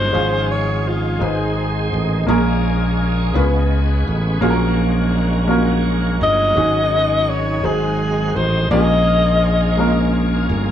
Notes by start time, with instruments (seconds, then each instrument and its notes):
Already playing: fingered electric bass G1, tonewheel organ F#3 C#4 G#4, grand piano G#3 C#4 D#4 F#4 G#4 A#4, alto saxophone C5
0.12 fingered electric bass G#1, grand piano G#2 G#3 C#4 F4 G#4 F5, tonewheel organ F3 G#3
0.51 alto saxophone C#5
0.88 alto saxophone F4
1.19 fingered electric bass G#1, grand piano G#2 G#3 C4 D#4 G#4 B4, tonewheel organ D#3 G#3 C4
1.25 alto saxophone G#4, grand piano C5
1.93 fingered electric bass A1
2.26 fingered electric bass A#1, grand piano A#2 A#3 C#4 F4 G#4 A#4, tonewheel organ G#3 A#3 C#4 G#4
3.34 fingered electric bass C#2, grand piano C#3 B3 C#4 F4 G#4 B4, tonewheel organ B3
4.07 fingered electric bass A1
4.41 fingered electric bass A#1, grand piano A#2 A#3 C#4 F4 F#4 G#4, tonewheel organ F#3 A#3
4.50 grand piano A#4
5.48 grand piano A#3 C#4 F4 F#4 A#4
6.21 fingered electric bass G1, alto saxophone D#5
6.55 fingered electric bass G#1, grand piano G#2 G#3 C#4 D#4 F#4 G#4, tonewheel organ D#3 G#3
7.29 alto saxophone C#5
7.63 fingered electric bass G#1, grand piano G#2 G#3 C4 D#4 F#4 G#4, tonewheel organ C4, alto saxophone G#4
8.36 fingered electric bass A1, alto saxophone C5
8.70 fingered electric bass A#1, grand piano A#2 G#3 A#3 C#4 F4 G4, tonewheel organ F3 A#3 C#4 G#4, alto saxophone D#5
8.80 grand piano G#4
9.77 grand piano G#3 A#3 C#4 F4 A#4
10.50 fingered electric bass G1